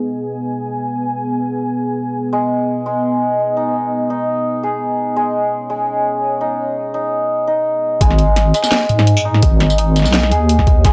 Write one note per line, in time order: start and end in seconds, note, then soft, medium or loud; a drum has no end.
0.00 7.97 B3 medium
0.00 7.97 G#4 medium
0.00 2.32 G#5 medium
2.33 2.85 G#3 medium
2.33 5.16 D#5 medium
2.86 5.15 G#3 medium
3.57 4.10 D#4 medium
4.10 6.40 D#4 medium
4.63 7.66 G#4 medium
5.16 5.69 G#3 medium
5.16 8.00 C#5 medium
5.70 8.00 G#3 medium
6.41 6.94 D#4 medium
6.94 7.47 D#4 medium
7.47 9.25 D#4 medium
8.01 8.53 G#1 loud
8.01 8.53 G#3 medium
8.01 kick loud
8.01 closed hi-hat medium
8.11 snare medium
8.19 closed hi-hat soft
8.36 snare medium
8.36 closed hi-hat medium
8.54 10.84 G#3 medium
8.54 closed hi-hat soft
8.54 tambourine soft
8.64 snare soft
8.64 tambourine medium
8.72 snare loud
8.72 snare medium
8.72 closed hi-hat medium
8.89 9.42 G#2 loud
8.89 closed hi-hat soft
8.99 snare medium
9.07 closed hi-hat medium
9.17 tambourine medium
9.25 9.78 D#4 medium
9.34 snare medium
9.42 10.07 G#1 loud
9.42 kick loud
9.42 closed hi-hat medium
9.60 snare medium
9.60 closed hi-hat soft
9.70 tambourine soft
9.78 10.93 D#4 medium
9.78 closed hi-hat medium
9.96 snare soft
9.96 closed hi-hat soft
9.96 tambourine soft
9.99 snare soft
10.02 snare soft
10.05 10.33 B1 loud
10.05 snare soft
10.05 tambourine medium
10.14 snare loud
10.14 closed hi-hat medium
10.23 snare medium
10.32 10.84 D#2 medium
10.32 10.93 G#4 medium
10.32 closed hi-hat soft
10.49 closed hi-hat medium
10.59 kick medium
10.59 snare medium
10.67 kick loud
10.67 closed hi-hat soft
10.85 10.93 G#1 loud
10.85 10.93 G#3 medium
10.85 kick loud
10.85 snare medium
10.85 closed hi-hat medium